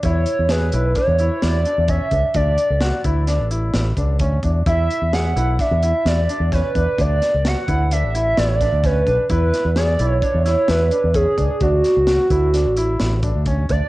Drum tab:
HH |xxxxxxxxxx|xxxxxxxxxx|xxxxxxxxxx|xxxxxxxxxx|
SD |--o-o-o---|--o-o-o---|--o-o-o-o-|-oo---ooo-|
BD |o---o---oo|o--o---ooo|o---o---oo|o--o---ooo|

HH |xxxxxxxxxx|xxxxxxxxxx|
SD |-oo--oo---|-oo-o-o---|
BD |o---o---oo|o--o---ooo|